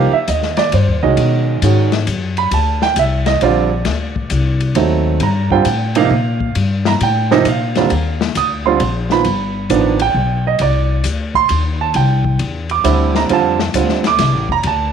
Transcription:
0.00 0.11 C2 medium
0.00 0.11 F3 medium
0.00 0.11 A#3 medium
0.00 0.11 D#4 medium
0.00 0.11 G4 medium
0.00 0.13 F5 medium
0.13 0.28 E5 medium
0.13 muted upright bass stroke soft
0.28 0.72 D#2 medium
0.28 0.58 D#5 medium
0.28 hi-hat pedal soft
0.28 ride medium
0.43 snare soft
0.57 0.72 D5 medium
0.57 snare soft
0.57 ride soft
0.72 0.89 G2 medium
0.72 1.03 C5 medium
0.72 ride medium
0.88 1.02 D#2 medium
1.03 1.17 C2 medium
1.03 1.60 D#3 medium
1.03 1.60 G#3 medium
1.03 1.60 C#4 medium
1.03 1.60 F#4 medium
1.03 2.03 D#5 medium
1.17 1.61 B2 medium
1.17 ride medium
1.62 2.06 G#2 medium
1.62 1.90 D#3 medium
1.62 1.90 G#3 medium
1.62 1.90 C#4 medium
1.62 1.91 F#4 medium
1.62 hi-hat pedal medium
1.62 ride medium
1.92 snare soft
1.92 ride soft
2.07 2.51 F#2 medium
2.07 hi-hat pedal medium
2.07 ride medium
2.37 2.52 B5 medium
2.37 ride soft
2.51 2.95 D2 medium
2.51 2.82 A5 medium
2.51 ride medium
2.82 2.97 G5 medium
2.82 snare soft
2.96 3.40 C2 medium
2.96 3.27 E5 medium
2.96 hi-hat pedal soft
2.96 ride medium
3.26 3.41 D#5 medium
3.26 snare soft
3.26 ride soft
3.41 3.85 A#1 medium
3.41 3.69 D3 medium
3.41 3.69 G3 medium
3.41 3.69 C4 medium
3.41 3.70 F4 medium
3.41 4.73 D5 medium
3.41 ride medium
3.85 4.30 D2 medium
3.85 snare soft
3.85 ride medium
4.16 kick medium
4.30 4.75 C2 medium
4.30 hi-hat pedal medium
4.30 ride medium
4.60 ride soft
4.75 5.19 D#2 medium
4.75 5.21 F#3 medium
4.75 5.21 A3 medium
4.75 5.21 C4 medium
4.75 5.21 D#4 medium
4.75 ride medium
5.20 5.64 G2 medium
5.20 5.51 A#5 medium
5.20 ride medium
5.51 5.64 D3 medium
5.51 5.65 G3 medium
5.51 5.65 C4 medium
5.51 5.65 F4 medium
5.51 5.93 G5 medium
5.51 kick medium
5.65 6.09 A2 medium
5.65 hi-hat pedal medium
5.65 ride medium
5.95 6.09 C3 medium
5.95 6.09 F3 medium
5.95 6.10 A#3 medium
5.95 6.10 D#4 medium
5.95 6.52 F5 medium
5.95 ride medium
6.10 6.54 A#2 medium
6.41 kick medium
6.55 6.99 G2 medium
6.55 ride medium
6.85 7.01 A#5 medium
6.85 snare medium
7.01 7.44 A2 medium
7.01 7.44 G5 medium
7.01 ride medium
7.31 7.44 C3 medium
7.31 7.44 F3 medium
7.31 7.44 A#3 medium
7.31 7.45 D#4 medium
7.31 snare soft
7.45 7.89 A#2 medium
7.45 8.18 F5 medium
7.45 hi-hat pedal medium
7.45 ride medium
7.75 7.89 D#2 medium
7.75 7.89 D3 medium
7.75 7.89 G3 medium
7.75 7.89 C4 medium
7.75 7.90 F4 medium
7.75 snare soft
7.75 ride soft
7.90 8.34 D#2 medium
7.90 ride medium
8.21 snare medium
8.35 8.79 D2 medium
8.35 8.65 D#6 medium
8.35 hi-hat pedal medium
8.35 ride medium
8.66 8.79 D3 medium
8.66 8.79 G3 medium
8.66 8.79 C4 medium
8.66 8.79 F4 medium
8.66 9.07 C6 medium
8.80 9.24 A#1 medium
8.80 ride medium
9.10 9.24 D#3 medium
9.10 9.24 F3 medium
9.10 9.24 B3 medium
9.10 9.24 F4 medium
9.10 9.67 B5 medium
9.10 snare soft
9.24 9.69 G1 medium
9.24 ride medium
9.69 10.13 A1 medium
9.69 9.97 D#3 medium
9.69 9.97 F3 medium
9.69 9.97 B3 medium
9.69 9.97 D4 medium
9.69 hi-hat pedal medium
9.69 ride medium
10.00 10.43 G5 medium
10.00 ride medium
10.14 10.58 B1 medium
10.47 10.60 D#5 medium
10.59 11.03 C2 medium
10.59 11.02 D5 medium
10.59 ride medium
11.04 11.48 D2 medium
11.04 hi-hat pedal medium
11.04 ride medium
11.35 11.77 C6 loud
11.35 kick soft
11.49 11.93 D#2 medium
11.49 ride medium
11.81 11.95 A5 medium
11.94 12.38 C2 medium
11.94 12.37 G5 medium
11.94 ride medium
12.24 kick medium
12.39 12.83 E2 medium
12.39 ride medium
12.69 13.12 D6 medium
12.69 ride soft
12.84 13.28 D2 medium
12.84 13.28 D3 medium
12.84 13.28 G3 medium
12.84 13.29 C4 medium
12.84 13.29 E4 medium
12.84 hi-hat pedal medium
12.84 ride medium
13.15 13.30 A#5 medium
13.15 snare soft
13.29 13.73 F2 medium
13.29 13.57 D3 medium
13.29 13.57 G3 medium
13.29 13.57 C4 medium
13.29 13.57 F4 medium
13.29 13.73 A5 medium
13.29 ride medium
13.59 snare soft
13.74 14.18 D2 medium
13.74 14.02 D3 medium
13.74 14.02 G3 soft
13.74 14.02 C4 soft
13.74 14.02 F4 medium
13.74 hi-hat pedal medium
13.74 ride medium
13.89 snare soft
14.04 14.47 D6 loud
14.04 snare soft
14.04 ride soft
14.19 14.34 C2 medium
14.19 snare soft
14.19 ride medium
14.34 14.49 A1 medium
14.49 14.63 F1 medium
14.49 14.65 A#5 loud
14.49 kick soft
14.63 14.93 D2 medium
14.63 14.93 A5 medium
14.63 ride medium

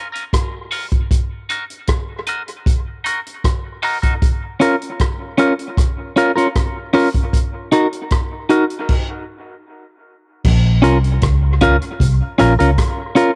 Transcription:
0.12 0.24 C#4 medium
0.12 0.24 F4 medium
0.12 0.23 A#4 medium
0.12 closed hi-hat soft
0.33 kick medium
0.33 cross-stick loud
0.33 closed hi-hat medium
0.71 0.85 C#4 medium
0.71 0.85 F4 medium
0.71 0.86 A#4 medium
0.71 open hi-hat medium
0.92 kick medium
0.92 closed hi-hat medium
1.11 kick loud
1.11 closed hi-hat medium
1.49 1.63 D#4 medium
1.49 1.63 F#4 medium
1.49 1.64 A#4 medium
1.49 closed hi-hat medium
1.70 closed hi-hat soft
1.87 kick medium
1.87 cross-stick loud
1.87 closed hi-hat medium
2.27 2.41 D#4 medium
2.27 2.42 F#4 medium
2.27 2.42 A#4 medium
2.27 closed hi-hat medium
2.48 closed hi-hat soft
2.66 kick loud
2.66 closed hi-hat medium
3.04 3.18 D#4 medium
3.04 3.19 F#4 medium
3.04 3.19 A#4 medium
3.04 closed hi-hat medium
3.27 closed hi-hat medium
3.44 kick medium
3.44 cross-stick loud
3.44 closed hi-hat medium
3.82 3.97 D#4 medium
3.82 3.97 F#4 medium
3.82 3.97 A#4 loud
3.82 open hi-hat medium
4.02 4.13 D#4 soft
4.02 4.13 F#4 soft
4.02 4.13 A#4 medium
4.02 kick medium
4.02 closed hi-hat medium
4.22 kick loud
4.22 closed hi-hat medium
4.60 4.74 C#4 medium
4.60 4.75 F4 medium
4.60 4.75 A#4 medium
4.60 closed hi-hat medium
4.82 closed hi-hat soft
4.99 kick medium
4.99 cross-stick loud
4.99 closed hi-hat medium
5.38 5.52 C#4 medium
5.38 5.53 F4 medium
5.38 5.53 A#4 medium
5.38 closed hi-hat medium
5.59 closed hi-hat soft
5.77 kick loud
5.77 cross-stick medium
5.77 closed hi-hat medium
6.16 6.30 C#4 medium
6.16 6.31 F4 medium
6.16 6.31 A#4 medium
6.16 closed hi-hat medium
6.36 6.47 C#4 medium
6.36 6.47 F4 medium
6.36 6.46 A#4 medium
6.36 closed hi-hat medium
6.55 kick medium
6.55 cross-stick loud
6.55 closed hi-hat medium
6.93 7.08 C#4 medium
6.93 7.08 F4 loud
6.93 7.08 A#4 loud
6.93 open hi-hat medium
7.14 kick medium
7.14 closed hi-hat soft
7.33 kick loud
7.33 closed hi-hat medium
7.72 7.86 D#4 medium
7.72 7.86 F#4 medium
7.72 7.87 A#4 medium
7.72 closed hi-hat medium
7.93 closed hi-hat soft
8.10 kick loud
8.10 cross-stick loud
8.10 closed hi-hat medium
8.50 8.64 D#4 medium
8.50 8.64 F#4 medium
8.50 8.64 A#4 medium
8.50 closed hi-hat medium
8.70 closed hi-hat soft
8.89 kick loud
8.89 crash medium
10.45 10.84 A#1 loud
10.45 kick loud
10.45 crash loud
10.82 11.19 C2 medium
10.82 10.97 C#4 medium
10.82 10.97 F4 medium
10.82 10.97 A#4 medium
10.82 closed hi-hat medium
11.04 closed hi-hat soft
11.22 11.78 C#2 medium
11.22 kick loud
11.22 cross-stick loud
11.22 closed hi-hat medium
11.61 11.75 C#4 medium
11.61 11.75 F4 medium
11.61 11.76 A#4 loud
11.61 kick loud
11.61 closed hi-hat medium
11.82 closed hi-hat soft
12.00 12.19 C2 medium
12.00 kick loud
12.00 closed hi-hat medium
12.38 12.58 A#1 medium
12.38 12.52 C#4 medium
12.38 12.53 F4 medium
12.38 12.53 A#4 medium
12.38 closed hi-hat medium
12.59 12.77 C#2 loud
12.59 12.70 C#4 medium
12.59 12.69 F4 medium
12.59 12.69 A#4 medium
12.59 closed hi-hat medium
12.78 kick loud
12.78 cross-stick loud
12.78 closed hi-hat medium
13.15 13.30 C#4 medium
13.15 13.30 F4 medium
13.15 13.31 A#4 loud
13.15 closed hi-hat medium

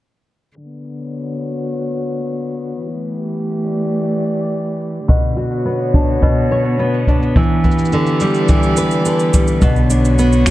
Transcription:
0.56 2.83 D3 medium
0.56 shaker soft
0.68 3.73 B3 medium
0.68 shaker soft
0.84 shaker medium
0.98 shaker soft
1.04 2.82 C#5 medium
1.13 2.82 F#4 medium
1.13 shaker soft
1.27 shaker soft
1.41 shaker medium
1.69 shaker soft
1.98 shaker medium
2.26 shaker soft
2.40 shaker soft
2.54 shaker medium
2.82 5.08 E3 medium
2.82 shaker soft
2.91 5.07 A3 medium
2.96 shaker soft
3.10 shaker medium
3.18 5.08 G4 medium
3.25 shaker soft
3.39 shaker soft
3.53 shaker soft
3.67 5.08 D5 medium
3.67 shaker medium
3.81 shaker soft
3.95 shaker soft
4.10 shaker soft
4.24 shaker medium
4.38 shaker soft
4.52 shaker soft
4.66 shaker soft
4.80 shaker medium
4.94 shaker soft
5.08 6.21 B2 medium
5.08 7.35 D3 medium
5.08 kick loud
5.08 shaker soft
5.23 10.51 B3 medium
5.23 shaker soft
5.37 7.41 F#4 medium
5.37 shaker medium
5.45 7.36 F#4 medium
5.52 shaker soft
5.62 6.79 B3 medium
5.62 7.36 C#5 medium
5.66 shaker soft
5.80 shaker soft
5.94 7.07 D4 medium
5.94 kick loud
5.94 shaker medium
6.08 shaker soft
6.22 7.41 B2 medium
6.22 kick loud
6.22 shaker soft
6.37 shaker soft
6.51 7.41 C#5 medium
6.51 shaker medium
6.65 shaker soft
6.79 7.64 B3 medium
6.79 shaker soft
6.94 shaker soft
7.07 8.21 D4 medium
7.07 kick medium
7.07 shaker medium
7.22 shaker soft
7.36 8.48 E3 medium
7.36 9.62 E3 medium
7.36 kick loud
7.36 shaker soft
7.43 shaker soft
7.64 10.19 B3 medium
7.64 9.62 G4 medium
7.64 kick medium
7.64 shaker soft
7.71 shaker soft
7.78 shaker soft
7.85 shaker medium
7.92 9.05 D3 medium
7.92 shaker soft
8.05 9.62 D5 medium
8.05 shaker soft
8.20 9.33 G3 medium
8.20 shaker medium
8.34 shaker soft
8.48 9.68 E3 medium
8.48 kick loud
8.48 shaker soft
8.63 shaker soft
8.77 10.51 B4 medium
8.77 shaker medium
8.91 shaker soft
9.05 10.18 D3 medium
9.05 shaker soft
9.19 shaker soft
9.34 9.68 G3 medium
9.34 kick loud
9.34 shaker medium
9.48 shaker soft
9.62 10.51 B1 medium
9.62 10.51 B2 medium
9.62 10.51 D3 medium
9.62 kick loud
9.62 shaker soft
9.76 shaker soft
9.83 10.51 C#5 medium
9.90 10.51 D4 medium
9.90 10.51 F#4 medium
9.90 shaker medium
10.05 shaker soft
10.19 10.51 B3 medium
10.19 shaker soft
10.33 shaker soft
10.46 10.51 F#4 medium
10.46 finger snap medium
10.46 kick loud
10.46 shaker medium

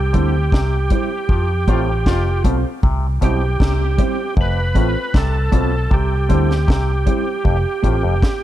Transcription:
0.00 0.11 C2 medium
0.00 2.43 G4 medium
0.13 0.50 D2 medium
0.13 0.37 D3 medium
0.13 0.31 G3 loud
0.13 0.30 C4 medium
0.13 0.31 C4 medium
0.13 0.30 E4 medium
0.13 0.32 E4 loud
0.13 0.30 G4 medium
0.13 0.30 C5 medium
0.13 kick medium
0.13 closed hi-hat medium
0.52 0.88 C2 medium
0.52 0.76 C3 medium
0.52 kick loud
0.52 snare loud
0.90 1.08 G3 medium
0.90 1.07 C4 medium
0.90 1.08 C4 medium
0.90 1.07 E4 medium
0.90 1.09 E4 medium
0.90 1.07 G4 medium
0.90 1.07 C5 medium
0.90 kick loud
0.90 closed hi-hat medium
1.29 1.65 F2 medium
1.29 1.53 F3 medium
1.29 1.47 F4 medium
1.29 kick loud
1.67 2.03 A1 medium
1.67 1.91 A2 medium
1.67 1.85 A3 medium
1.67 1.84 C4 medium
1.67 1.85 C4 medium
1.67 1.84 F4 medium
1.67 1.81 F4 loud
1.67 1.86 F4 medium
1.67 1.84 A4 medium
1.67 1.84 C5 loud
1.67 kick loud
1.67 closed hi-hat medium
2.06 2.42 F1 medium
2.06 2.30 F2 medium
2.06 2.62 F4 loud
2.06 kick loud
2.06 snare loud
2.44 2.63 B1 medium
2.44 2.57 B2 medium
2.44 2.62 A3 medium
2.44 2.60 C4 medium
2.44 2.62 C4 medium
2.44 2.61 F4 medium
2.44 2.62 F4 medium
2.44 2.61 A4 medium
2.44 2.61 C5 medium
2.44 kick medium
2.44 closed hi-hat medium
2.83 3.19 C2 loud
2.83 3.06 C3 medium
2.83 kick loud
3.21 3.57 B1 medium
3.21 3.45 B2 medium
3.21 3.39 G3 medium
3.21 3.38 C4 loud
3.21 3.39 C4 loud
3.21 3.38 E4 medium
3.21 3.40 E4 loud
3.21 3.38 G4 medium
3.21 4.35 G4 medium
3.21 3.38 C5 medium
3.21 kick medium
3.21 closed hi-hat medium
3.60 3.96 C2 medium
3.60 3.83 C3 medium
3.60 kick loud
3.60 snare loud
3.98 4.15 G3 medium
3.98 4.14 C4 medium
3.98 4.16 C4 medium
3.98 4.15 E4 medium
3.98 4.16 E4 medium
3.98 4.15 G4 medium
3.98 4.15 C5 loud
3.98 kick loud
3.98 closed hi-hat medium
4.37 4.73 F1 loud
4.37 4.60 F2 medium
4.37 kick loud
4.41 5.19 B4 loud
4.75 4.94 A1 medium
4.75 4.88 A2 medium
4.75 4.92 A3 medium
4.75 4.91 C4 medium
4.75 4.93 C4 medium
4.75 4.92 F4 medium
4.75 4.93 F4 loud
4.75 4.92 A4 medium
4.75 4.92 C5 loud
4.75 kick loud
4.75 closed hi-hat medium
5.14 5.50 C2 loud
5.14 5.37 C3 medium
5.14 5.95 A4 loud
5.14 kick loud
5.14 snare loud
5.52 5.88 B1 medium
5.52 5.75 B2 medium
5.52 5.69 A3 loud
5.52 5.68 C4 medium
5.52 5.70 C4 loud
5.52 5.69 F4 medium
5.52 5.70 F4 medium
5.52 5.69 A4 medium
5.52 5.69 C5 loud
5.52 kick loud
5.52 closed hi-hat medium
5.91 6.27 C2 loud
5.91 6.14 C3 loud
5.91 8.43 G4 medium
5.91 kick loud
6.29 6.65 D2 medium
6.29 6.53 D3 medium
6.29 6.46 G3 medium
6.29 6.46 C4 medium
6.29 6.47 C4 medium
6.29 6.46 E4 medium
6.29 6.47 E4 medium
6.29 6.46 G4 medium
6.29 6.46 C5 loud
6.29 kick medium
6.29 closed hi-hat medium
6.51 snare medium
6.68 7.04 C2 medium
6.68 6.91 C3 medium
6.68 kick loud
6.68 snare loud
7.06 7.23 G3 medium
7.06 7.22 C4 medium
7.06 7.24 C4 medium
7.06 7.23 E4 medium
7.06 7.24 E4 medium
7.06 7.23 G4 medium
7.06 7.23 C5 loud
7.06 kick medium
7.06 closed hi-hat medium
7.45 7.64 F1 loud
7.45 7.57 F2 medium
7.45 kick loud
7.83 8.02 A1 medium
7.83 7.96 A2 medium
7.83 8.00 A3 medium
7.83 7.99 C4 loud
7.83 8.01 C4 loud
7.83 7.99 F4 medium
7.83 8.01 F4 loud
7.83 8.00 A4 medium
7.83 8.00 C5 medium
7.83 kick loud
7.83 closed hi-hat medium
8.03 8.21 F1 medium
8.03 8.15 F2 medium
8.22 kick loud
8.22 snare loud

